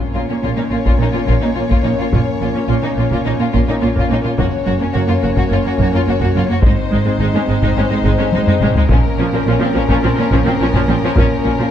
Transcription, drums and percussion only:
0, 0, Header, 1, 2, 480
1, 0, Start_track
1, 0, Key_signature, -5, "minor"
1, 0, Tempo, 564706
1, 1809, Time_signature, 4, 2, 24, 8
1, 9952, End_track
2, 0, Start_track
2, 0, Title_t, "Taiko and cinematic ensemble drums"
2, 730, Note_on_c, 9, 41, 66
2, 815, Note_off_c, 9, 41, 0
2, 1088, Note_on_c, 9, 41, 58
2, 1173, Note_off_c, 9, 41, 0
2, 1451, Note_on_c, 9, 41, 58
2, 1536, Note_off_c, 9, 41, 0
2, 1808, Note_on_c, 9, 41, 73
2, 1893, Note_off_c, 9, 41, 0
2, 2647, Note_on_c, 9, 41, 62
2, 2732, Note_off_c, 9, 41, 0
2, 3008, Note_on_c, 9, 41, 55
2, 3093, Note_off_c, 9, 41, 0
2, 3366, Note_on_c, 9, 41, 62
2, 3451, Note_off_c, 9, 41, 0
2, 3724, Note_on_c, 9, 41, 81
2, 3809, Note_off_c, 9, 41, 0
2, 4559, Note_on_c, 9, 41, 70
2, 4644, Note_off_c, 9, 41, 0
2, 4920, Note_on_c, 9, 41, 54
2, 5005, Note_off_c, 9, 41, 0
2, 5275, Note_on_c, 9, 41, 64
2, 5360, Note_off_c, 9, 41, 0
2, 5632, Note_on_c, 9, 41, 83
2, 5717, Note_off_c, 9, 41, 0
2, 6477, Note_on_c, 9, 41, 67
2, 6562, Note_off_c, 9, 41, 0
2, 6835, Note_on_c, 9, 41, 62
2, 6920, Note_off_c, 9, 41, 0
2, 7074, Note_on_c, 9, 48, 74
2, 7159, Note_off_c, 9, 48, 0
2, 7201, Note_on_c, 9, 45, 77
2, 7286, Note_off_c, 9, 45, 0
2, 7316, Note_on_c, 9, 47, 75
2, 7401, Note_off_c, 9, 47, 0
2, 7437, Note_on_c, 9, 43, 79
2, 7522, Note_off_c, 9, 43, 0
2, 7555, Note_on_c, 9, 41, 82
2, 7640, Note_off_c, 9, 41, 0
2, 8404, Note_on_c, 9, 41, 66
2, 8489, Note_off_c, 9, 41, 0
2, 8766, Note_on_c, 9, 41, 70
2, 8851, Note_off_c, 9, 41, 0
2, 9126, Note_on_c, 9, 41, 72
2, 9211, Note_off_c, 9, 41, 0
2, 9483, Note_on_c, 9, 41, 92
2, 9568, Note_off_c, 9, 41, 0
2, 9952, End_track
0, 0, End_of_file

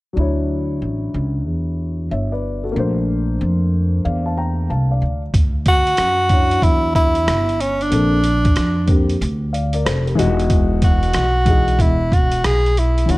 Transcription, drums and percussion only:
0, 0, Header, 1, 2, 480
1, 0, Start_track
1, 0, Tempo, 645161
1, 130, Time_signature, 4, 2, 24, 8
1, 9805, End_track
2, 0, Start_track
2, 0, Title_t, "Drums"
2, 3971, Note_on_c, 9, 36, 102
2, 3974, Note_on_c, 9, 42, 74
2, 4046, Note_off_c, 9, 36, 0
2, 4049, Note_off_c, 9, 42, 0
2, 4209, Note_on_c, 9, 42, 80
2, 4210, Note_on_c, 9, 36, 101
2, 4283, Note_off_c, 9, 42, 0
2, 4285, Note_off_c, 9, 36, 0
2, 4366, Note_on_c, 9, 42, 48
2, 4440, Note_off_c, 9, 42, 0
2, 4444, Note_on_c, 9, 42, 82
2, 4451, Note_on_c, 9, 37, 95
2, 4518, Note_off_c, 9, 42, 0
2, 4525, Note_off_c, 9, 37, 0
2, 4683, Note_on_c, 9, 42, 64
2, 4685, Note_on_c, 9, 36, 90
2, 4757, Note_off_c, 9, 42, 0
2, 4760, Note_off_c, 9, 36, 0
2, 4846, Note_on_c, 9, 42, 45
2, 4920, Note_off_c, 9, 42, 0
2, 4927, Note_on_c, 9, 36, 84
2, 4935, Note_on_c, 9, 42, 73
2, 5002, Note_off_c, 9, 36, 0
2, 5010, Note_off_c, 9, 42, 0
2, 5172, Note_on_c, 9, 36, 78
2, 5177, Note_on_c, 9, 42, 51
2, 5246, Note_off_c, 9, 36, 0
2, 5251, Note_off_c, 9, 42, 0
2, 5321, Note_on_c, 9, 42, 51
2, 5395, Note_off_c, 9, 42, 0
2, 5415, Note_on_c, 9, 42, 87
2, 5416, Note_on_c, 9, 37, 111
2, 5490, Note_off_c, 9, 42, 0
2, 5491, Note_off_c, 9, 37, 0
2, 5572, Note_on_c, 9, 42, 29
2, 5647, Note_off_c, 9, 42, 0
2, 5658, Note_on_c, 9, 42, 69
2, 5733, Note_off_c, 9, 42, 0
2, 5810, Note_on_c, 9, 42, 42
2, 5885, Note_off_c, 9, 42, 0
2, 5891, Note_on_c, 9, 42, 75
2, 5965, Note_off_c, 9, 42, 0
2, 6129, Note_on_c, 9, 42, 79
2, 6203, Note_off_c, 9, 42, 0
2, 6286, Note_on_c, 9, 42, 50
2, 6289, Note_on_c, 9, 36, 87
2, 6360, Note_off_c, 9, 42, 0
2, 6363, Note_off_c, 9, 36, 0
2, 6367, Note_on_c, 9, 42, 80
2, 6374, Note_on_c, 9, 37, 96
2, 6441, Note_off_c, 9, 42, 0
2, 6449, Note_off_c, 9, 37, 0
2, 6604, Note_on_c, 9, 42, 63
2, 6605, Note_on_c, 9, 36, 86
2, 6678, Note_off_c, 9, 42, 0
2, 6680, Note_off_c, 9, 36, 0
2, 6767, Note_on_c, 9, 42, 45
2, 6841, Note_off_c, 9, 42, 0
2, 6859, Note_on_c, 9, 42, 75
2, 6933, Note_off_c, 9, 42, 0
2, 7100, Note_on_c, 9, 42, 51
2, 7174, Note_off_c, 9, 42, 0
2, 7239, Note_on_c, 9, 42, 59
2, 7314, Note_off_c, 9, 42, 0
2, 7339, Note_on_c, 9, 37, 114
2, 7339, Note_on_c, 9, 42, 87
2, 7413, Note_off_c, 9, 42, 0
2, 7414, Note_off_c, 9, 37, 0
2, 7495, Note_on_c, 9, 42, 28
2, 7570, Note_off_c, 9, 42, 0
2, 7581, Note_on_c, 9, 42, 77
2, 7655, Note_off_c, 9, 42, 0
2, 7734, Note_on_c, 9, 42, 46
2, 7808, Note_off_c, 9, 42, 0
2, 7811, Note_on_c, 9, 42, 73
2, 7812, Note_on_c, 9, 36, 98
2, 7885, Note_off_c, 9, 42, 0
2, 7886, Note_off_c, 9, 36, 0
2, 8049, Note_on_c, 9, 42, 76
2, 8051, Note_on_c, 9, 36, 106
2, 8124, Note_off_c, 9, 42, 0
2, 8126, Note_off_c, 9, 36, 0
2, 8205, Note_on_c, 9, 42, 47
2, 8279, Note_off_c, 9, 42, 0
2, 8284, Note_on_c, 9, 42, 84
2, 8292, Note_on_c, 9, 37, 102
2, 8359, Note_off_c, 9, 42, 0
2, 8366, Note_off_c, 9, 37, 0
2, 8527, Note_on_c, 9, 42, 62
2, 8529, Note_on_c, 9, 36, 80
2, 8601, Note_off_c, 9, 42, 0
2, 8603, Note_off_c, 9, 36, 0
2, 8689, Note_on_c, 9, 42, 39
2, 8764, Note_off_c, 9, 42, 0
2, 8771, Note_on_c, 9, 36, 84
2, 8778, Note_on_c, 9, 42, 77
2, 8845, Note_off_c, 9, 36, 0
2, 8853, Note_off_c, 9, 42, 0
2, 9017, Note_on_c, 9, 36, 88
2, 9025, Note_on_c, 9, 42, 50
2, 9091, Note_off_c, 9, 36, 0
2, 9100, Note_off_c, 9, 42, 0
2, 9163, Note_on_c, 9, 42, 57
2, 9238, Note_off_c, 9, 42, 0
2, 9258, Note_on_c, 9, 42, 89
2, 9259, Note_on_c, 9, 37, 113
2, 9333, Note_off_c, 9, 37, 0
2, 9333, Note_off_c, 9, 42, 0
2, 9421, Note_on_c, 9, 42, 29
2, 9496, Note_off_c, 9, 42, 0
2, 9504, Note_on_c, 9, 42, 75
2, 9578, Note_off_c, 9, 42, 0
2, 9656, Note_on_c, 9, 42, 43
2, 9730, Note_off_c, 9, 42, 0
2, 9738, Note_on_c, 9, 42, 71
2, 9805, Note_off_c, 9, 42, 0
2, 9805, End_track
0, 0, End_of_file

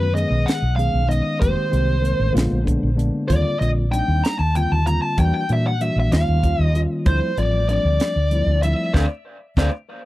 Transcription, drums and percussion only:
0, 0, Header, 1, 2, 480
1, 0, Start_track
1, 0, Tempo, 627746
1, 1079, Time_signature, 6, 3, 24, 8
1, 7686, End_track
2, 0, Start_track
2, 0, Title_t, "Drums"
2, 127, Note_on_c, 9, 42, 52
2, 203, Note_off_c, 9, 42, 0
2, 368, Note_on_c, 9, 42, 69
2, 378, Note_on_c, 9, 38, 94
2, 445, Note_off_c, 9, 42, 0
2, 454, Note_off_c, 9, 38, 0
2, 606, Note_on_c, 9, 42, 53
2, 682, Note_off_c, 9, 42, 0
2, 849, Note_on_c, 9, 42, 48
2, 925, Note_off_c, 9, 42, 0
2, 1084, Note_on_c, 9, 36, 96
2, 1085, Note_on_c, 9, 42, 67
2, 1160, Note_off_c, 9, 36, 0
2, 1162, Note_off_c, 9, 42, 0
2, 1324, Note_on_c, 9, 42, 48
2, 1400, Note_off_c, 9, 42, 0
2, 1566, Note_on_c, 9, 42, 52
2, 1642, Note_off_c, 9, 42, 0
2, 1810, Note_on_c, 9, 42, 72
2, 1819, Note_on_c, 9, 38, 93
2, 1886, Note_off_c, 9, 42, 0
2, 1895, Note_off_c, 9, 38, 0
2, 2044, Note_on_c, 9, 36, 66
2, 2050, Note_on_c, 9, 42, 58
2, 2120, Note_off_c, 9, 36, 0
2, 2127, Note_off_c, 9, 42, 0
2, 2287, Note_on_c, 9, 42, 57
2, 2364, Note_off_c, 9, 42, 0
2, 2523, Note_on_c, 9, 36, 93
2, 2523, Note_on_c, 9, 42, 70
2, 2600, Note_off_c, 9, 36, 0
2, 2600, Note_off_c, 9, 42, 0
2, 2767, Note_on_c, 9, 42, 49
2, 2843, Note_off_c, 9, 42, 0
2, 3008, Note_on_c, 9, 42, 58
2, 3084, Note_off_c, 9, 42, 0
2, 3248, Note_on_c, 9, 42, 78
2, 3257, Note_on_c, 9, 38, 98
2, 3324, Note_off_c, 9, 42, 0
2, 3333, Note_off_c, 9, 38, 0
2, 3482, Note_on_c, 9, 42, 58
2, 3558, Note_off_c, 9, 42, 0
2, 3722, Note_on_c, 9, 42, 55
2, 3799, Note_off_c, 9, 42, 0
2, 3959, Note_on_c, 9, 42, 73
2, 3961, Note_on_c, 9, 36, 91
2, 4035, Note_off_c, 9, 42, 0
2, 4037, Note_off_c, 9, 36, 0
2, 4198, Note_on_c, 9, 42, 49
2, 4275, Note_off_c, 9, 42, 0
2, 4441, Note_on_c, 9, 42, 52
2, 4518, Note_off_c, 9, 42, 0
2, 4681, Note_on_c, 9, 42, 70
2, 4690, Note_on_c, 9, 38, 91
2, 4757, Note_off_c, 9, 42, 0
2, 4766, Note_off_c, 9, 38, 0
2, 4919, Note_on_c, 9, 36, 69
2, 4921, Note_on_c, 9, 42, 54
2, 4996, Note_off_c, 9, 36, 0
2, 4997, Note_off_c, 9, 42, 0
2, 5162, Note_on_c, 9, 42, 53
2, 5239, Note_off_c, 9, 42, 0
2, 5398, Note_on_c, 9, 42, 67
2, 5400, Note_on_c, 9, 36, 94
2, 5475, Note_off_c, 9, 42, 0
2, 5477, Note_off_c, 9, 36, 0
2, 5639, Note_on_c, 9, 42, 49
2, 5716, Note_off_c, 9, 42, 0
2, 5879, Note_on_c, 9, 42, 51
2, 5955, Note_off_c, 9, 42, 0
2, 6117, Note_on_c, 9, 42, 73
2, 6126, Note_on_c, 9, 38, 95
2, 6193, Note_off_c, 9, 42, 0
2, 6203, Note_off_c, 9, 38, 0
2, 6355, Note_on_c, 9, 42, 55
2, 6431, Note_off_c, 9, 42, 0
2, 6599, Note_on_c, 9, 42, 57
2, 6675, Note_off_c, 9, 42, 0
2, 6838, Note_on_c, 9, 36, 79
2, 6847, Note_on_c, 9, 38, 75
2, 6914, Note_off_c, 9, 36, 0
2, 6923, Note_off_c, 9, 38, 0
2, 7317, Note_on_c, 9, 36, 85
2, 7322, Note_on_c, 9, 38, 85
2, 7393, Note_off_c, 9, 36, 0
2, 7398, Note_off_c, 9, 38, 0
2, 7686, End_track
0, 0, End_of_file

